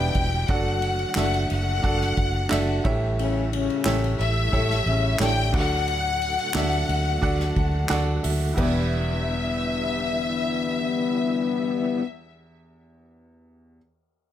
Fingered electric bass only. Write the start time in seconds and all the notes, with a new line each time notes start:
0.15 E1
0.49 F#1
1.17 F#1
1.51 F#1
1.84 F#1
2.17 F#1
2.52 F#1
2.85 A1
3.86 A1
4.20 A1
4.53 A1
4.86 A1
5.20 A1
5.54 D2
6.55 D2
6.89 D2
7.23 D2
7.57 D2
7.90 D2
8.25 D2
8.57 E1